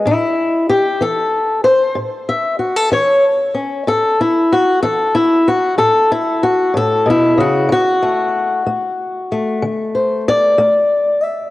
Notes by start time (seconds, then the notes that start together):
0.06 A2 E4
0.69 G4
1.01 E3 A4
1.64 C5
1.95 A2
2.29 E5
2.59 F#4
2.76 A4
2.92 E3 C#5
3.54 C#4
3.87 A2 A4
4.21 E4
4.53 F#4
4.83 E3 A4
5.15 E4
5.48 F#4
5.78 A2 A4
6.12 E4
6.43 F#4
6.74 A2 A4
7.06 B2
7.10 E4
7.37 C#3 F#4
7.69 D3 F#4
8.03 A3
8.66 A3
9.32 A3
9.62 D3
9.95 C5
10.28 D5
10.58 A3
11.23 E5